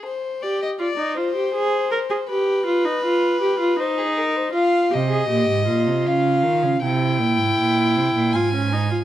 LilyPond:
<<
  \new Staff \with { instrumentName = "Violin" } { \time 3/4 \key c \phrygian \tempo 4 = 80 c''8 d''16 ees''16 d''8 c''4. | b'2 c''16 aes'16 bes'16 c''16 | f''8 ees''4. f''4 | g''2 aes''4 | }
  \new Staff \with { instrumentName = "Viola" } { \time 3/4 \key c \phrygian r8 g'8 f'16 ees'16 f'16 g'16 aes'8 bes'16 aes'16 | g'8 f'16 ees'16 f'8 g'16 f'16 ees'4 | f'8 g'16 aes'16 g'8 f'4. | e'2 f'16 des'16 ees'16 f'16 | }
  \new Staff \with { instrumentName = "Cello" } { \clef bass \time 3/4 \key c \phrygian r2. | r2. | r8 c8 bes,16 aes,16 bes,16 c16 des8 ees16 des16 | c8 bes,16 aes,16 bes,8 c16 bes,16 aes,4 | }
>>